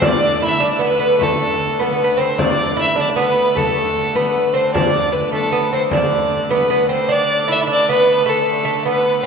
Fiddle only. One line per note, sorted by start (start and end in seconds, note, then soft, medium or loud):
0.05 0.43 D5 medium
0.45 0.59 E5 medium
0.59 0.66 E5 medium
0.64 0.83 D5 medium
0.84 1.25 B4 loud
1.23 1.85 A4 medium
1.83 2.22 B4 medium
2.20 2.40 C5 medium
2.41 2.77 D5 loud
2.81 2.98 E5 medium
3.01 3.09 D5 medium
3.19 3.58 B4 loud
3.57 4.17 A4 medium
4.16 4.57 B4 medium
4.56 4.73 C5 medium
4.74 5.14 D5 medium
5.13 5.32 B4 medium
5.33 5.70 A4 medium
5.74 5.82 C5 medium
5.94 6.48 D5 medium
6.53 6.88 B4 medium
6.93 7.13 C5 medium
7.12 7.50 D5 loud
7.52 7.60 E5 loud
7.72 7.88 D5 loud
7.93 8.31 B4 loud
8.29 8.86 A4 medium
8.89 9.23 B4 loud